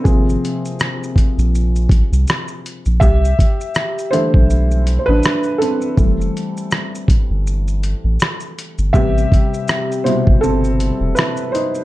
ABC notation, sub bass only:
X:1
M:4/4
L:1/16
Q:"Swing 16ths" 1/4=81
K:C
V:1 name="Sub bass" clef=bass
_A,,,2 z4 z _B,,,4 C,, z3 B,,, | C,,2 z4 z B,,,4 A,,, z4 | F,,,2 z4 z G,,,4 A,,, z3 G,,, | A,,,2 z4 z G,,,4 E,,, z4 |]